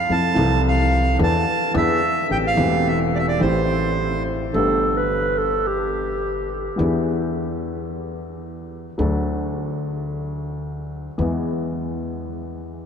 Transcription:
0.00 0.12 F5 medium
0.09 0.32 F2 soft
0.09 0.33 F2 medium
0.09 0.32 F3 soft
0.09 0.32 C4 soft
0.09 0.32 E4 soft
0.09 0.32 A4 soft
0.09 0.62 A5 medium
0.34 1.15 C2 medium
0.34 1.15 C3 medium
0.34 1.15 E3 medium
0.34 1.14 F3 medium
0.34 1.14 C4 medium
0.38 1.16 A4 medium
0.68 1.18 F5 medium
1.19 1.42 E2 medium
1.19 1.42 E3 medium
1.19 1.42 B3 medium
1.19 1.42 D4 medium
1.19 1.43 A4 medium
1.23 1.73 A5 medium
1.74 1.98 E2 medium
1.74 1.98 E3 medium
1.74 1.98 B3 medium
1.74 1.98 D4 medium
1.74 1.98 G#4 medium
1.74 2.27 E5 medium
2.30 2.53 A1 soft
2.30 2.53 A2 soft
2.30 2.53 E3 soft
2.30 2.53 A3 soft
2.30 2.53 C4 soft
2.30 2.53 G4 soft
2.30 2.38 G5 medium
2.47 2.88 F5 medium
2.55 3.37 E1 medium
2.55 3.37 E2 medium
2.55 3.36 E3 medium
2.55 3.36 A3 medium
2.55 3.37 C4 medium
2.59 3.38 G4 medium
2.88 2.99 E5 medium
3.15 3.18 D5 medium
3.15 3.26 E5 soft
3.28 3.41 D5 medium
3.39 4.49 A1 medium
3.39 4.50 A1 medium
3.39 4.50 A2 medium
3.39 4.48 E3 medium
3.39 4.49 A3 medium
3.39 4.50 C4 medium
3.39 4.23 C5 medium
3.43 4.51 G4 medium
4.53 6.67 G1 medium
4.53 6.68 G1 medium
4.53 6.68 G2 medium
4.53 6.66 D3 soft
4.53 6.67 A3 soft
4.53 6.68 B3 soft
4.53 6.68 G4 medium
4.53 4.98 A4 medium
4.96 5.39 B4 medium
5.38 5.68 A4 medium
5.67 6.78 G4 medium
6.77 8.88 E2 medium
6.77 8.89 E2 medium
6.77 8.88 E3 medium
6.77 8.88 B3 soft
6.77 8.89 D4 soft
6.77 8.89 G#4 medium
8.98 11.08 D2 medium
8.98 11.08 D3 medium
8.98 11.07 F#3 medium
8.98 11.07 A3 soft
8.98 11.08 D4 soft
8.98 11.09 A4 medium
11.18 12.86 E2 medium
11.18 12.86 E3 medium
11.18 12.86 G#3 soft
11.18 12.86 B3 soft
11.22 12.86 G#4 medium

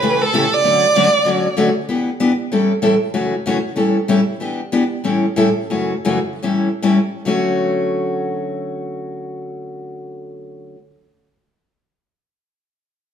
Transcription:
0.00 0.22 A2 medium
0.00 0.22 C#3 medium
0.00 0.22 E3 medium
0.00 0.22 A3 medium
0.00 0.23 C#4 medium
0.00 0.22 G4 medium
0.00 0.23 B4 medium
0.22 0.55 A4 medium
0.33 0.44 A2 medium
0.33 0.44 C#3 medium
0.33 0.44 E3 medium
0.33 0.44 A3 medium
0.33 0.44 C#4 medium
0.33 0.45 G4 medium
0.54 1.59 D5 loud
0.64 0.84 D3 medium
0.64 0.84 F#3 medium
0.64 0.84 A3 medium
0.64 0.84 C#4 medium
0.64 0.85 F#4 medium
0.96 1.06 D3 medium
0.96 1.07 F#3 medium
0.96 1.07 A3 medium
0.96 1.07 C#4 medium
0.96 1.07 F#4 loud
1.25 1.46 D3 medium
1.25 1.46 F#3 medium
1.25 1.46 A3 medium
1.25 1.46 C#4 medium
1.25 1.46 F#4 medium
1.57 1.68 D3 medium
1.57 1.68 F#3 medium
1.57 1.69 A3 medium
1.57 1.69 C#4 loud
1.57 1.69 F#4 medium
1.89 2.09 E3 medium
1.89 2.09 B3 medium
1.89 2.09 D4 medium
1.89 2.09 G4 medium
2.20 2.31 E3 medium
2.20 2.31 B3 medium
2.20 2.31 D4 medium
2.20 2.31 G4 medium
2.52 2.71 A2 medium
2.52 2.71 E3 medium
2.52 2.72 G3 medium
2.52 2.72 C#4 medium
2.52 2.72 E4 medium
2.52 2.72 A4 medium
2.82 2.93 A2 medium
2.82 2.93 E3 medium
2.82 2.94 G3 medium
2.82 2.94 C#4 medium
2.82 2.94 E4 medium
2.82 2.94 A4 medium
3.14 3.34 F#2 medium
3.14 3.34 C#3 medium
3.14 3.34 E3 medium
3.14 3.34 A3 medium
3.14 3.34 C#4 medium
3.14 3.34 F#4 medium
3.46 3.56 F#2 medium
3.46 3.57 C#3 medium
3.46 3.57 E3 medium
3.46 3.57 A3 medium
3.46 3.57 C#4 medium
3.46 3.57 F#4 medium
3.76 3.96 A2 medium
3.76 3.96 E3 medium
3.76 3.97 G3 medium
3.76 3.96 C#4 medium
3.76 3.97 E4 medium
3.76 3.97 A4 medium
4.08 4.19 A2 medium
4.08 4.19 E3 medium
4.08 4.19 G3 medium
4.08 4.20 C#4 medium
4.08 4.19 E4 medium
4.08 4.20 A4 medium
4.40 4.60 E3 medium
4.40 4.60 B3 medium
4.40 4.60 D4 medium
4.40 4.60 G4 medium
4.72 4.82 E3 medium
4.72 4.83 B3 medium
4.72 4.83 D4 medium
4.72 4.83 G4 medium
5.04 5.24 A2 medium
5.04 5.24 E3 medium
5.04 5.24 G3 medium
5.04 5.25 C#4 medium
5.04 5.24 E4 medium
5.04 5.25 A4 medium
5.36 5.48 A2 medium
5.36 5.48 E3 medium
5.36 5.48 G3 medium
5.36 5.48 C#4 medium
5.36 5.48 E4 medium
5.36 5.48 A4 medium
5.70 5.92 F#2 medium
5.70 5.92 C#3 medium
5.70 5.93 E3 medium
5.70 5.93 A3 medium
5.70 5.93 C#4 medium
5.70 5.93 F#4 medium
6.05 6.18 F#2 medium
6.05 6.18 C#3 medium
6.05 6.18 E3 medium
6.05 6.18 A3 medium
6.05 6.18 C#4 medium
6.05 6.18 F#4 medium
6.42 6.68 A2 medium
6.42 6.68 E3 medium
6.42 6.68 G3 medium
6.42 6.68 C#4 medium
6.42 6.68 E4 medium
6.42 6.68 A4 medium
6.82 6.97 A2 medium
6.82 6.97 E3 medium
6.82 6.97 G3 medium
6.82 6.98 C#4 medium
6.82 6.98 E4 medium
6.82 6.98 A4 medium
7.25 10.75 D3 medium
7.25 10.76 F#3 medium
7.25 10.77 A3 medium
7.25 10.77 C#4 medium
7.25 10.78 F#4 medium

